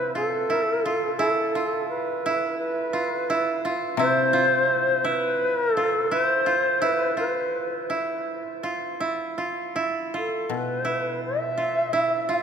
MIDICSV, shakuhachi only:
0, 0, Header, 1, 2, 480
1, 0, Start_track
1, 0, Tempo, 700935
1, 834, Time_signature, 4, 2, 24, 8
1, 4677, Tempo, 735294
1, 7077, Tempo, 708383
1, 8377, End_track
2, 0, Start_track
2, 0, Title_t, "Shakuhachi"
2, 0, Program_c, 0, 77
2, 0, Note_on_c, 0, 71, 74
2, 96, Note_off_c, 0, 71, 0
2, 106, Note_on_c, 0, 69, 79
2, 796, Note_off_c, 0, 69, 0
2, 800, Note_on_c, 0, 69, 68
2, 1269, Note_off_c, 0, 69, 0
2, 1293, Note_on_c, 0, 71, 64
2, 1749, Note_off_c, 0, 71, 0
2, 1765, Note_on_c, 0, 71, 68
2, 2461, Note_off_c, 0, 71, 0
2, 2731, Note_on_c, 0, 72, 81
2, 3458, Note_on_c, 0, 71, 91
2, 3468, Note_off_c, 0, 72, 0
2, 3835, Note_off_c, 0, 71, 0
2, 3835, Note_on_c, 0, 70, 91
2, 3924, Note_off_c, 0, 70, 0
2, 3924, Note_on_c, 0, 69, 91
2, 4183, Note_on_c, 0, 72, 75
2, 4194, Note_off_c, 0, 69, 0
2, 4672, Note_on_c, 0, 71, 77
2, 4682, Note_off_c, 0, 72, 0
2, 4903, Note_off_c, 0, 71, 0
2, 4907, Note_on_c, 0, 71, 64
2, 5352, Note_off_c, 0, 71, 0
2, 6856, Note_on_c, 0, 69, 54
2, 7103, Note_on_c, 0, 71, 55
2, 7114, Note_off_c, 0, 69, 0
2, 7570, Note_off_c, 0, 71, 0
2, 7574, Note_on_c, 0, 76, 72
2, 8256, Note_off_c, 0, 76, 0
2, 8300, Note_on_c, 0, 77, 60
2, 8328, Note_on_c, 0, 76, 65
2, 8334, Note_off_c, 0, 77, 0
2, 8377, Note_off_c, 0, 76, 0
2, 8377, End_track
0, 0, End_of_file